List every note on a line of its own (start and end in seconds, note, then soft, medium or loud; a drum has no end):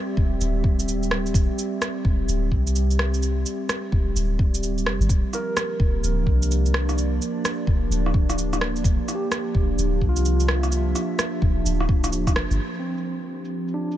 0.00 5.10 G3 medium
0.00 6.48 C4 medium
0.00 12.60 G4 medium
0.00 5.10 D5 medium
0.00 6.27 E5 medium
0.17 0.39 D1 medium
0.17 kick loud
0.41 1.33 D1 medium
0.41 shaker medium
0.64 kick loud
0.79 shaker medium
0.88 shaker medium
1.03 shaker soft
1.11 cross-stick loud
1.26 shaker soft
1.34 1.48 D1 medium
1.34 kick loud
1.34 shaker medium
1.59 shaker medium
1.82 cross-stick loud
1.82 shaker medium
2.05 2.27 D1 medium
2.05 kick loud
2.28 2.53 D1 medium
2.28 shaker medium
2.52 3.44 C2 medium
2.52 kick medium
2.67 shaker medium
2.76 shaker medium
2.91 shaker soft
2.99 cross-stick loud
3.14 shaker soft
3.23 shaker medium
3.46 shaker medium
3.69 cross-stick loud
3.69 shaker medium
3.92 4.14 D1 medium
3.92 kick loud
4.16 4.86 D1 medium
4.16 shaker medium
4.39 kick loud
4.54 shaker medium
4.63 shaker medium
4.78 shaker soft
4.85 4.99 F1 medium
4.85 cross-stick loud
5.00 5.09 G1 medium
5.00 shaker soft
5.09 13.97 F3 medium
5.09 kick loud
5.09 shaker soft
5.30 12.60 A#3 medium
5.30 cross-stick soft
5.30 shaker soft
5.34 13.97 D4 medium
5.34 6.24 A#4 medium
5.57 cross-stick loud
5.57 shaker medium
5.80 6.02 D1 medium
5.80 kick loud
5.92 10.19 D5 medium
6.04 6.28 D1 medium
6.04 shaker medium
6.27 7.19 C2 medium
6.27 kick medium
6.42 shaker medium
6.51 shaker medium
6.66 shaker soft
6.74 cross-stick loud
6.89 cross-stick soft
6.89 shaker soft
6.98 shaker soft
7.22 shaker medium
7.45 cross-stick loud
7.45 shaker medium
7.67 7.89 D1 medium
7.67 kick loud
7.90 8.83 D1 medium
7.90 shaker medium
8.06 cross-stick soft
8.14 kick loud
8.30 cross-stick medium
8.30 shaker medium
8.38 shaker medium
8.53 cross-stick soft
8.53 shaker soft
8.61 cross-stick loud
8.76 shaker soft
8.84 8.98 D1 loud
8.84 kick loud
8.84 shaker medium
9.08 cross-stick soft
9.08 shaker medium
9.15 10.04 G4 medium
9.32 cross-stick loud
9.32 shaker medium
9.55 9.77 D1 medium
9.55 kick loud
9.78 10.03 D1 medium
9.78 shaker medium
10.01 10.94 C2 medium
10.01 12.59 E5 medium
10.01 kick medium
10.09 10.99 F4 medium
10.16 shaker medium
10.25 shaker medium
10.40 shaker soft
10.48 cross-stick loud
10.63 cross-stick medium
10.63 shaker soft
10.72 shaker medium
10.95 cross-stick soft
10.95 shaker medium
11.19 cross-stick loud
11.19 shaker medium
11.42 11.64 D1 medium
11.42 kick loud
11.64 12.37 D1 medium
11.64 12.54 D4 medium
11.64 shaker medium
11.80 cross-stick medium
11.89 kick loud
12.04 cross-stick medium
12.04 shaker medium
12.13 shaker medium
12.27 kick medium
12.27 cross-stick medium
12.27 shaker soft
12.36 12.50 F1 medium
12.36 cross-stick loud
12.51 12.59 G1 medium
12.51 shaker soft
12.74 shaker soft
12.80 13.69 C4 medium
12.85 13.97 C4 medium
12.85 13.97 F4 medium
12.97 13.97 G4 medium
12.97 shaker medium
13.45 shaker medium
13.68 shaker soft
13.74 13.97 D4 medium
13.81 13.97 D5 medium
13.92 shaker medium